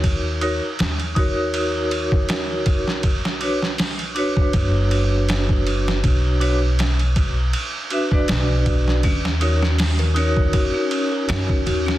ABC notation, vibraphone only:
X:1
M:4/4
L:1/16
Q:"Swing 16ths" 1/4=80
K:Cb
V:1 name="Vibraphone"
[EGBd]2 [EGBd] z3 [EGBd]8- [EGBd]2 | z2 [=D^F=B^c] z3 [DFBc]8- [DFBc]2- | [=D^F=B^c]2 [DFBc] z6 z [DFB_f] [D^FB=d]4- [DFBd] | z2 [EGBd] z3 [EGBd]8- [EGBd]2 |]